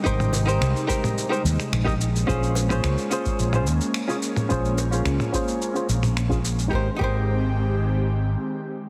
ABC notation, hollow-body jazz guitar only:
X:1
M:4/4
L:1/16
Q:1/4=108
K:Ab
V:1 name="Hollow-body jazz guitar"
[EGBc]3 [EGBc]3 [EGBc]3 [EGBc] z3 [EGBe] z2 | [DFAc]3 [DFAc]3 [DFAc]3 [DFAc] z3 [DFAd] z2 | [DFAc]3 [DFAc]3 [DFAc]3 [DFAc] z3 [DFAd] z2 | [EGBc] z [EGBc]12- [EGBc]2 |]